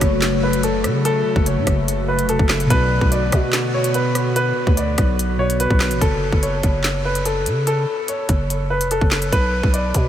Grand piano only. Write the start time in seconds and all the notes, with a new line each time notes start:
Already playing: C#5
0.43 B4
0.63 A4
1.05 A4
1.47 C#5
2.08 B4
2.29 A4
2.70 B4
3.12 D5
3.74 C#5
3.95 B4
4.36 B4
4.77 D5
5.39 C#5
5.60 B4
6.01 A4
6.43 C#5
7.05 B4
7.25 A4
7.67 A4
8.09 C#5
8.70 B4
8.91 A4
9.33 B4
9.74 D5